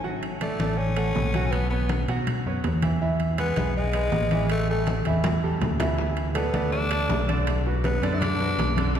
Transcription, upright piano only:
0.04 0.34 F#3 medium
0.04 0.34 F#4 medium
0.04 0.35 F#5 medium
0.42 0.57 A3 medium
0.42 0.57 A4 medium
0.42 0.57 D5 medium
0.60 0.91 A3 medium
0.60 0.91 A4 medium
0.60 0.91 D5 medium
0.97 1.27 A3 medium
0.97 1.27 A4 medium
0.97 1.28 F#5 medium
1.35 1.65 F#3 medium
1.35 1.65 F#4 medium
1.35 1.65 F#5 medium
1.71 2.02 B3 medium
1.71 2.02 B4 medium
1.71 2.02 C#5 medium
2.09 2.39 F#3 medium
2.09 2.39 F#4 medium
2.09 2.39 F#5 medium
2.46 2.76 B3 medium
2.46 2.77 B4 medium
2.46 2.77 C#5 medium
2.83 2.98 E3 medium
2.83 2.98 E4 medium
2.83 2.98 E5 medium
3.01 3.32 E3 medium
3.01 3.32 E4 medium
3.01 3.32 E5 medium
3.38 3.54 G#3 medium
3.38 3.54 G#4 medium
3.38 3.54 B4 medium
3.58 3.88 G#3 medium
3.58 3.88 G#4 medium
3.58 3.88 B4 medium
3.94 4.25 G#3 medium
3.94 4.25 G#4 medium
3.94 4.25 B4 medium
4.32 4.62 E3 medium
4.32 4.62 E4 medium
4.32 4.62 E5 medium
4.70 5.00 G3 medium
4.70 5.00 G4 medium
4.70 5.00 A4 medium
5.06 5.37 E3 medium
5.06 5.37 E4 loud
5.06 5.37 E5 medium
5.43 5.74 G3 medium
5.43 5.74 G4 medium
5.43 5.74 A4 medium
5.80 5.95 E3 medium
5.80 5.95 E4 medium
5.80 5.95 E5 medium
5.98 6.28 E3 medium
5.98 6.29 E4 medium
5.98 6.29 E5 medium
6.35 6.50 A3 medium
6.35 6.51 A4 medium
6.35 6.51 D5 medium
6.53 6.84 A3 medium
6.53 6.84 A4 medium
6.53 6.85 D5 medium
6.91 7.22 A3 medium
6.91 7.22 A4 medium
6.91 7.22 D5 medium
7.28 7.59 D3 medium
7.28 7.59 D4 medium
7.28 7.59 D5 medium
7.66 7.96 F#3 medium
7.66 7.97 F#4 medium
7.66 7.97 B4 medium
8.03 8.33 D3 medium
8.03 8.33 D4 medium
8.03 8.34 D5 medium
8.40 8.70 F#3 medium
8.40 8.70 F#4 medium
8.40 8.71 B4 medium
8.77 8.92 D3 medium
8.77 8.92 D4 medium
8.77 8.92 D5 medium
8.96 9.00 D3 medium
8.96 9.00 D4 medium
8.96 9.00 D5 medium

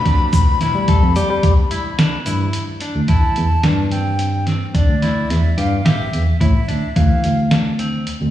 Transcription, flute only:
0.00 2.50 B5 loud
3.08 3.93 A5 medium
3.92 4.47 G5 medium
4.76 5.32 D5 medium
5.30 5.60 E5 medium
5.58 5.87 F5 medium
5.85 6.40 E5 medium
6.40 6.98 E5 medium
6.96 7.52 F5 medium

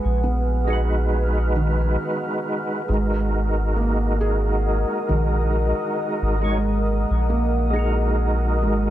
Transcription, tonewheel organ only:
0.65 2.82 G#3 medium
0.65 2.83 D#4 medium
0.70 2.85 F#4 medium
0.70 2.86 B4 medium
2.85 4.14 G#3 medium
2.85 4.16 D#4 medium
2.91 4.17 F#4 medium
2.91 4.19 A#4 medium
4.18 6.35 G#3 medium
4.18 6.36 D#4 medium
4.23 6.38 F#4 medium
4.23 6.39 A#4 medium
6.40 6.58 G#3 medium
6.40 6.59 D#4 medium
6.40 6.60 F#4 medium
6.45 6.60 C#5 loud
7.70 8.90 G#3 medium
7.70 8.90 D#4 medium
7.76 8.90 F#4 medium
7.76 8.90 A#4 medium

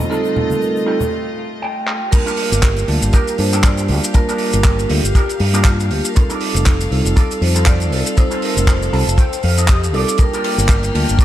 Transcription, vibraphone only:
0.10 0.56 A4 medium
0.55 0.61 A#4 medium
0.60 1.07 A4 medium
2.11 2.83 A#4 loud
3.13 3.39 A#4 loud
3.39 3.65 C5 loud
3.63 4.15 D5 loud
4.14 4.38 A#4 loud
4.39 4.64 A#4 loud
4.65 4.91 A#4 loud
4.90 5.62 G4 loud
5.66 5.91 F4 medium
5.91 6.08 G4 medium
6.09 6.15 A#4 medium
6.16 6.88 A4 medium
7.17 7.40 A4 loud
7.42 7.65 C5 loud
7.67 8.19 D5 loud
8.17 8.43 C5 loud
8.43 8.66 A#4 loud
8.69 8.92 C5 loud
8.93 9.65 C5 loud
9.69 9.92 G4 medium
9.94 10.17 A4 medium
10.19 10.91 A#4 medium
11.21 11.25 A#4 loud

